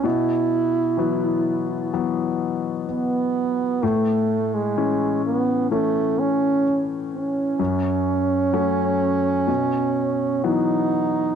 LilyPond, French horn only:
\new Staff \with { instrumentName = "French horn" } { \time 4/4 \key b \mixolydian \tempo 4 = 63 e'2 r4 b4 | a8. gis8. b8 a8 cis'8. r16 cis'8~ | cis'2. dis'4 | }